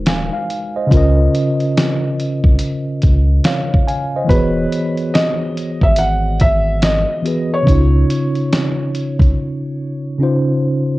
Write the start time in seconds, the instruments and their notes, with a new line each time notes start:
Already playing: sub bass D#1, tine electric piano G#3 D#4 F#4 A#4
0.06 tine electric piano F5 G#5, snare, closed hi-hat
0.33 tine electric piano F5
0.50 closed hi-hat
0.76 tine electric piano C5 D#5
0.87 tine electric piano C#3 C#4
0.91 sub bass C#2, tine electric piano F4 A#4, kick, closed hi-hat
0.97 tine electric piano D#5
1.35 closed hi-hat
1.60 closed hi-hat
1.77 snare, closed hi-hat
2.20 closed hi-hat
2.44 sub bass C2, kick
2.59 closed hi-hat
3.02 sub bass C#2, kick, closed hi-hat
3.44 tine electric piano C#5 F5, snare, closed hi-hat
3.74 kick
3.87 tine electric piano F5 G#5, closed hi-hat
4.16 tine electric piano C5 D#5
4.24 tine electric piano E3 B3
4.29 sub bass E1, tine electric piano F#4 G#4, felt piano B4, kick, closed hi-hat
4.35 tine electric piano C#5
4.72 closed hi-hat
4.97 closed hi-hat
5.14 felt piano D#5, snare, closed hi-hat
5.57 closed hi-hat
5.81 sub bass G#1, felt piano E5, kick
5.96 felt piano F#5, closed hi-hat
6.40 felt piano E5, kick, closed hi-hat
6.82 felt piano D#5, snare, closed hi-hat
7.22 tine electric piano E3 B3 F#4, closed hi-hat
7.26 tine electric piano G#4 B4
7.54 felt piano C#5
7.62 tine electric piano C#3 C#4
7.67 sub bass C#2, tine electric piano D#4 F4, kick, closed hi-hat
7.73 tine electric piano C#5
8.10 closed hi-hat
8.35 closed hi-hat
8.53 snare, closed hi-hat
8.95 closed hi-hat
9.19 sub bass C2, kick, closed hi-hat
10.18 tine electric piano C#3 C#4 D#4
10.22 tine electric piano F4 C5